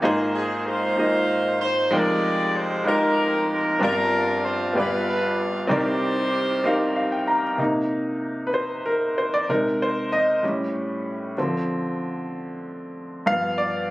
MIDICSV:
0, 0, Header, 1, 3, 480
1, 0, Start_track
1, 0, Key_signature, -3, "minor"
1, 0, Tempo, 630915
1, 20, Time_signature, 6, 3, 24, 8
1, 10579, End_track
2, 0, Start_track
2, 0, Title_t, "Horn section"
2, 0, Program_c, 0, 61
2, 264, Note_on_c, 0, 68, 85
2, 485, Note_off_c, 0, 68, 0
2, 499, Note_on_c, 0, 72, 94
2, 508, Note_on_c, 0, 65, 72
2, 509, Note_on_c, 0, 63, 71
2, 1193, Note_off_c, 0, 63, 0
2, 1193, Note_off_c, 0, 65, 0
2, 1215, Note_off_c, 0, 72, 0
2, 1224, Note_on_c, 0, 72, 93
2, 1445, Note_off_c, 0, 72, 0
2, 1468, Note_on_c, 0, 74, 110
2, 1472, Note_on_c, 0, 67, 84
2, 1473, Note_on_c, 0, 68, 79
2, 1943, Note_off_c, 0, 74, 0
2, 1951, Note_on_c, 0, 72, 92
2, 2154, Note_off_c, 0, 67, 0
2, 2155, Note_off_c, 0, 68, 0
2, 2185, Note_off_c, 0, 72, 0
2, 2187, Note_on_c, 0, 70, 96
2, 2191, Note_on_c, 0, 63, 73
2, 2194, Note_on_c, 0, 67, 70
2, 2662, Note_off_c, 0, 70, 0
2, 2674, Note_on_c, 0, 70, 94
2, 2873, Note_off_c, 0, 63, 0
2, 2875, Note_off_c, 0, 67, 0
2, 2889, Note_off_c, 0, 70, 0
2, 2912, Note_on_c, 0, 62, 77
2, 2913, Note_on_c, 0, 70, 96
2, 2915, Note_on_c, 0, 65, 74
2, 3354, Note_off_c, 0, 70, 0
2, 3380, Note_on_c, 0, 72, 88
2, 3593, Note_off_c, 0, 62, 0
2, 3595, Note_off_c, 0, 65, 0
2, 3602, Note_off_c, 0, 72, 0
2, 3629, Note_on_c, 0, 62, 63
2, 3631, Note_on_c, 0, 65, 72
2, 3632, Note_on_c, 0, 71, 82
2, 3856, Note_off_c, 0, 71, 0
2, 3865, Note_on_c, 0, 71, 86
2, 4117, Note_off_c, 0, 71, 0
2, 4312, Note_off_c, 0, 62, 0
2, 4313, Note_off_c, 0, 65, 0
2, 4338, Note_on_c, 0, 67, 68
2, 4340, Note_on_c, 0, 63, 65
2, 4351, Note_on_c, 0, 72, 101
2, 5505, Note_off_c, 0, 67, 0
2, 5507, Note_off_c, 0, 63, 0
2, 5512, Note_off_c, 0, 72, 0
2, 10579, End_track
3, 0, Start_track
3, 0, Title_t, "Grand piano"
3, 0, Program_c, 1, 0
3, 0, Control_c, 1, 64, 127
3, 15, Note_on_c, 1, 58, 84
3, 19, Note_on_c, 1, 63, 86
3, 25, Note_on_c, 1, 32, 67
3, 26, Note_on_c, 1, 65, 82
3, 28, Control_c, 1, 64, 0
3, 28, Note_on_c, 1, 44, 70
3, 35, Note_on_c, 1, 68, 85
3, 39, Note_on_c, 1, 72, 100
3, 146, Control_c, 1, 64, 127
3, 617, Note_off_c, 1, 58, 0
3, 619, Note_off_c, 1, 63, 0
3, 623, Note_off_c, 1, 65, 0
3, 627, Note_off_c, 1, 68, 0
3, 629, Note_off_c, 1, 72, 0
3, 731, Note_on_c, 1, 58, 55
3, 738, Note_on_c, 1, 63, 58
3, 746, Note_on_c, 1, 65, 52
3, 749, Note_on_c, 1, 68, 56
3, 757, Note_on_c, 1, 75, 66
3, 1335, Note_off_c, 1, 58, 0
3, 1339, Note_off_c, 1, 63, 0
3, 1342, Note_off_c, 1, 65, 0
3, 1344, Note_off_c, 1, 68, 0
3, 1348, Note_off_c, 1, 75, 0
3, 1431, Note_off_c, 1, 32, 0
3, 1432, Note_off_c, 1, 44, 0
3, 1450, Note_on_c, 1, 56, 79
3, 1455, Note_on_c, 1, 63, 66
3, 1460, Note_on_c, 1, 41, 62
3, 1461, Note_on_c, 1, 29, 60
3, 1463, Note_on_c, 1, 65, 71
3, 1468, Note_on_c, 1, 79, 72
3, 1470, Control_c, 1, 64, 0
3, 1475, Note_on_c, 1, 70, 84
3, 1605, Control_c, 1, 64, 127
3, 2054, Note_off_c, 1, 56, 0
3, 2057, Note_off_c, 1, 63, 0
3, 2061, Note_off_c, 1, 65, 0
3, 2063, Note_off_c, 1, 79, 0
3, 2067, Note_off_c, 1, 70, 0
3, 2163, Note_on_c, 1, 56, 63
3, 2169, Note_on_c, 1, 63, 55
3, 2176, Note_on_c, 1, 65, 61
3, 2182, Note_on_c, 1, 67, 56
3, 2187, Note_on_c, 1, 72, 70
3, 2770, Note_off_c, 1, 56, 0
3, 2773, Note_off_c, 1, 63, 0
3, 2777, Note_off_c, 1, 65, 0
3, 2780, Note_off_c, 1, 67, 0
3, 2782, Note_off_c, 1, 72, 0
3, 2867, Note_off_c, 1, 41, 0
3, 2868, Note_off_c, 1, 29, 0
3, 2886, Note_on_c, 1, 60, 81
3, 2895, Note_on_c, 1, 62, 72
3, 2897, Note_on_c, 1, 31, 62
3, 2900, Note_on_c, 1, 43, 59
3, 2902, Note_on_c, 1, 65, 74
3, 2906, Note_on_c, 1, 67, 74
3, 2908, Control_c, 1, 64, 0
3, 2913, Note_on_c, 1, 74, 89
3, 3032, Control_c, 1, 64, 127
3, 3491, Note_off_c, 1, 60, 0
3, 3496, Note_off_c, 1, 62, 0
3, 3500, Note_off_c, 1, 65, 0
3, 3501, Note_off_c, 1, 67, 0
3, 3505, Note_off_c, 1, 74, 0
3, 3586, Note_off_c, 1, 31, 0
3, 3588, Note_off_c, 1, 43, 0
3, 3601, Note_on_c, 1, 59, 63
3, 3611, Note_on_c, 1, 65, 54
3, 3614, Note_on_c, 1, 31, 56
3, 3615, Note_on_c, 1, 67, 60
3, 3616, Note_on_c, 1, 43, 60
3, 3621, Note_on_c, 1, 68, 54
3, 3628, Control_c, 1, 64, 0
3, 3630, Note_on_c, 1, 74, 67
3, 3740, Control_c, 1, 64, 127
3, 4209, Note_off_c, 1, 59, 0
3, 4214, Note_off_c, 1, 65, 0
3, 4216, Note_off_c, 1, 67, 0
3, 4219, Note_off_c, 1, 68, 0
3, 4223, Note_off_c, 1, 74, 0
3, 4304, Note_off_c, 1, 31, 0
3, 4305, Note_off_c, 1, 43, 0
3, 4317, Note_on_c, 1, 60, 81
3, 4324, Note_on_c, 1, 63, 69
3, 4330, Note_on_c, 1, 67, 67
3, 4332, Note_on_c, 1, 36, 65
3, 4334, Note_on_c, 1, 48, 57
3, 4339, Note_on_c, 1, 70, 74
3, 4345, Note_on_c, 1, 74, 83
3, 4346, Control_c, 1, 64, 0
3, 4477, Control_c, 1, 64, 127
3, 4926, Note_off_c, 1, 60, 0
3, 4930, Note_off_c, 1, 63, 0
3, 4933, Note_off_c, 1, 67, 0
3, 4937, Note_off_c, 1, 70, 0
3, 4940, Note_off_c, 1, 74, 0
3, 5049, Note_on_c, 1, 60, 74
3, 5052, Note_on_c, 1, 63, 67
3, 5060, Note_on_c, 1, 67, 61
3, 5064, Note_on_c, 1, 70, 64
3, 5071, Note_on_c, 1, 77, 80
3, 5286, Note_off_c, 1, 77, 0
3, 5297, Note_on_c, 1, 77, 60
3, 5408, Note_off_c, 1, 77, 0
3, 5417, Note_on_c, 1, 79, 56
3, 5528, Note_off_c, 1, 79, 0
3, 5535, Note_on_c, 1, 82, 60
3, 5652, Note_off_c, 1, 60, 0
3, 5654, Note_off_c, 1, 63, 0
3, 5658, Note_off_c, 1, 67, 0
3, 5659, Note_off_c, 1, 70, 0
3, 5742, Note_off_c, 1, 36, 0
3, 5743, Note_off_c, 1, 48, 0
3, 5758, Note_off_c, 1, 82, 0
3, 5766, Note_on_c, 1, 48, 51
3, 5773, Note_on_c, 1, 58, 42
3, 5776, Note_on_c, 1, 63, 58
3, 5785, Control_c, 1, 64, 0
3, 5925, Control_c, 1, 64, 127
3, 6442, Note_on_c, 1, 71, 62
3, 6459, Note_off_c, 1, 48, 0
3, 6463, Note_off_c, 1, 58, 0
3, 6465, Note_off_c, 1, 63, 0
3, 6495, Note_off_c, 1, 71, 0
3, 6496, Note_on_c, 1, 72, 72
3, 6738, Note_on_c, 1, 70, 71
3, 6742, Note_off_c, 1, 72, 0
3, 6983, Note_off_c, 1, 70, 0
3, 6983, Note_on_c, 1, 72, 71
3, 7091, Note_off_c, 1, 72, 0
3, 7104, Note_on_c, 1, 74, 81
3, 7220, Note_on_c, 1, 48, 49
3, 7222, Note_off_c, 1, 74, 0
3, 7223, Control_c, 1, 64, 0
3, 7226, Note_on_c, 1, 70, 84
3, 7227, Note_on_c, 1, 56, 50
3, 7231, Note_on_c, 1, 63, 60
3, 7343, Control_c, 1, 64, 127
3, 7467, Note_off_c, 1, 70, 0
3, 7473, Note_on_c, 1, 72, 82
3, 7702, Note_on_c, 1, 75, 82
3, 7710, Note_off_c, 1, 72, 0
3, 7906, Note_off_c, 1, 48, 0
3, 7910, Note_off_c, 1, 56, 0
3, 7912, Note_off_c, 1, 63, 0
3, 7922, Note_off_c, 1, 75, 0
3, 7933, Note_on_c, 1, 45, 46
3, 7937, Note_on_c, 1, 55, 45
3, 7943, Note_on_c, 1, 61, 49
3, 7944, Control_c, 1, 64, 0
3, 8074, Control_c, 1, 64, 127
3, 8623, Note_off_c, 1, 45, 0
3, 8625, Note_off_c, 1, 55, 0
3, 8628, Note_off_c, 1, 61, 0
3, 8655, Note_on_c, 1, 50, 53
3, 8659, Note_on_c, 1, 53, 45
3, 8660, Note_on_c, 1, 60, 57
3, 8662, Control_c, 1, 64, 0
3, 8786, Control_c, 1, 64, 127
3, 10064, Note_off_c, 1, 50, 0
3, 10066, Note_off_c, 1, 53, 0
3, 10067, Note_off_c, 1, 60, 0
3, 10090, Note_on_c, 1, 43, 54
3, 10095, Note_on_c, 1, 53, 49
3, 10096, Note_on_c, 1, 77, 97
3, 10098, Note_on_c, 1, 59, 54
3, 10105, Control_c, 1, 64, 0
3, 10239, Control_c, 1, 64, 127
3, 10331, Note_on_c, 1, 74, 86
3, 10342, Note_off_c, 1, 77, 0
3, 10385, Note_off_c, 1, 74, 0
3, 10411, Note_off_c, 1, 43, 0
3, 10414, Note_off_c, 1, 53, 0
3, 10415, Note_off_c, 1, 59, 0
3, 10579, End_track
0, 0, End_of_file